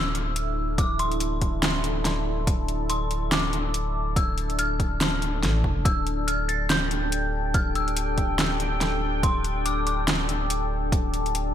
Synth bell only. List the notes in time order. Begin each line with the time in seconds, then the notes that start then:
Already playing: E6
0.78 D6
0.99 C6
2.90 C6
3.32 D6
4.16 E6
4.59 F6
5.85 E6
6.28 F6
6.49 A6
6.70 G6
7.54 F6
7.76 E6
9.23 C6
9.66 D6
9.87 D6